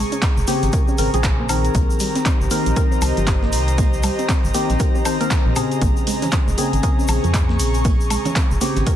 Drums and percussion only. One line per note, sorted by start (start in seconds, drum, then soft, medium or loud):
0.12 closed hi-hat medium
0.12 shaker soft
0.22 kick loud
0.22 snare loud
0.22 clap loud
0.22 closed hi-hat medium
0.22 shaker soft
0.37 shaker soft
0.47 snare medium
0.47 closed hi-hat medium
0.47 open hi-hat loud
0.47 shaker loud
0.63 snare soft
0.63 closed hi-hat medium
0.63 shaker soft
0.72 kick loud
0.72 closed hi-hat medium
0.72 shaker medium
0.88 shaker soft
0.98 closed hi-hat medium
0.98 open hi-hat loud
0.98 shaker loud
1.14 closed hi-hat medium
1.14 closed hi-hat soft
1.14 shaker soft
1.23 kick loud
1.23 snare loud
1.23 clap loud
1.23 closed hi-hat medium
1.23 shaker medium
1.49 closed hi-hat medium
1.49 open hi-hat loud
1.49 high woodblock medium
1.49 shaker loud
1.64 closed hi-hat medium
1.64 shaker soft
1.75 kick loud
1.75 closed hi-hat medium
1.75 shaker medium
1.90 shaker soft
2.00 closed hi-hat medium
2.00 open hi-hat loud
2.00 shaker loud
2.15 snare medium
2.15 closed hi-hat medium
2.15 shaker soft
2.26 kick loud
2.26 snare loud
2.26 clap loud
2.26 closed hi-hat medium
2.26 shaker medium
2.41 shaker soft
2.51 closed hi-hat medium
2.51 open hi-hat loud
2.51 shaker loud
2.66 closed hi-hat medium
2.66 shaker soft
2.76 kick loud
2.76 closed hi-hat medium
2.76 shaker medium
2.92 shaker soft
3.02 closed hi-hat medium
3.02 open hi-hat loud
3.02 high woodblock medium
3.02 shaker loud
3.17 closed hi-hat medium
3.17 shaker soft
3.27 kick loud
3.27 snare loud
3.27 clap loud
3.27 closed hi-hat medium
3.27 shaker medium
3.43 snare soft
3.53 closed hi-hat medium
3.53 open hi-hat loud
3.53 shaker medium
3.68 closed hi-hat medium
3.68 shaker soft
3.78 kick loud
3.78 closed hi-hat medium
3.78 open hi-hat medium
3.78 shaker medium
3.93 shaker soft
4.03 closed hi-hat medium
4.03 open hi-hat loud
4.03 high woodblock medium
4.03 shaker medium
4.19 closed hi-hat medium
4.19 shaker soft
4.29 kick loud
4.29 snare loud
4.29 clap loud
4.29 closed hi-hat medium
4.29 shaker medium
4.45 shaker soft
4.54 snare medium
4.54 closed hi-hat medium
4.54 open hi-hat loud
4.54 shaker medium
4.70 snare soft
4.70 closed hi-hat medium
4.70 shaker soft
4.79 kick loud
4.79 closed hi-hat medium
4.79 shaker medium
4.95 shaker soft
5.05 closed hi-hat medium
5.05 open hi-hat loud
5.05 high woodblock medium
5.05 shaker loud
5.21 closed hi-hat soft
5.21 closed hi-hat medium
5.21 shaker soft
5.30 kick loud
5.30 snare loud
5.30 clap loud
5.30 closed hi-hat medium
5.30 shaker medium
5.56 closed hi-hat medium
5.56 open hi-hat loud
5.56 high woodblock medium
5.56 shaker loud
5.71 closed hi-hat medium
5.71 shaker soft
5.81 kick loud
5.81 closed hi-hat medium
5.81 closed hi-hat loud
5.81 shaker medium
5.97 shaker soft
6.07 closed hi-hat medium
6.07 open hi-hat loud
6.07 muted conga medium
6.07 shaker medium
6.22 snare medium
6.22 closed hi-hat medium
6.22 low conga medium
6.22 shaker soft
6.32 kick loud
6.32 snare loud
6.32 clap loud
6.32 closed hi-hat medium
6.32 shaker medium
6.48 muted conga medium
6.48 shaker soft
6.58 closed hi-hat medium
6.58 open hi-hat loud
6.58 high conga medium
6.58 shaker medium
6.73 closed hi-hat medium
6.73 shaker soft
6.83 kick loud
6.83 closed hi-hat medium
6.83 shaker medium
6.99 muted conga soft
6.99 shaker soft
7.08 closed hi-hat medium
7.08 open hi-hat loud
7.08 high woodblock medium
7.08 shaker medium
7.24 closed hi-hat medium
7.24 shaker soft
7.34 kick loud
7.34 snare loud
7.34 clap loud
7.34 closed hi-hat medium
7.34 muted conga medium
7.34 shaker medium
7.49 snare soft
7.59 closed hi-hat medium
7.59 open hi-hat loud
7.59 shaker loud
7.74 closed hi-hat medium
7.74 shaker soft
7.85 kick loud
7.85 closed hi-hat medium
7.85 open hi-hat medium
7.85 muted conga medium
7.85 shaker medium
8.00 shaker soft
8.10 closed hi-hat medium
8.10 open hi-hat loud
8.10 high woodblock medium
8.10 shaker medium
8.25 closed hi-hat medium
8.25 muted conga medium
8.25 low conga loud
8.25 shaker soft
8.36 kick loud
8.36 snare loud
8.36 clap loud
8.36 closed hi-hat medium
8.36 shaker medium
8.51 shaker soft
8.61 snare medium
8.61 closed hi-hat medium
8.61 open hi-hat loud
8.61 high conga medium
8.61 shaker medium
8.76 snare soft
8.76 closed hi-hat medium
8.76 muted conga medium
8.76 shaker soft
8.87 kick loud
8.87 closed hi-hat medium
8.87 shaker medium